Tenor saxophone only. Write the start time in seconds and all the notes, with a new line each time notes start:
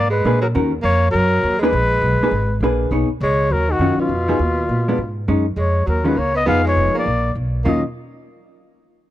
0.10 G#3
0.42 F#3
0.82 A#3
1.11 F#3
1.59 G#3
3.23 G#3
3.51 F#3
3.69 D#3
3.99 B2
5.57 G#3
5.86 F#3
6.05 G#3
6.17 A#3
6.35 B3
6.46 B3
6.64 G#3
6.95 A#3
7.64 A#3